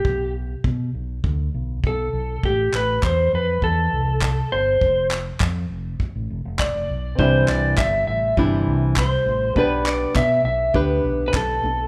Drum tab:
CP |--------|-xx---x-|-xx---x-|-xx---x-|
BD |o-o-o-o-|o-o-o-o-|o-o-o-o-|o-o-o-o-|

CP |-xx---x-|
BD |o-o-o-o-|